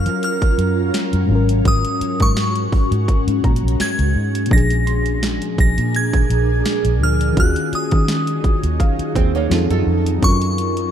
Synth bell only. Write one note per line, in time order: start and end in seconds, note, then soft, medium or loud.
0.00 0.23 F6 medium
0.24 1.62 F6 medium
1.68 2.23 D#6 loud
2.22 3.60 C#6 medium
3.81 4.54 G#6 loud
4.53 5.19 A#6 loud
5.60 5.96 A#6 loud
5.96 7.05 G#6 loud
7.03 7.36 F6 loud
7.40 7.54 F#6 loud
7.75 8.77 D#6 medium
10.24 10.91 C#6 loud